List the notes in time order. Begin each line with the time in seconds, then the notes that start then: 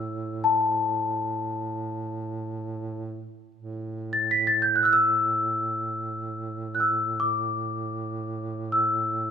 Already playing: A2 E6
0.44 A5
3.55 A2
4.13 A6
4.31 B6
4.47 A6
4.62 G6
4.76 F#6
4.83 E6 F#6
4.93 E6
6.75 F#6
6.80 E6
7.20 D6
8.72 E6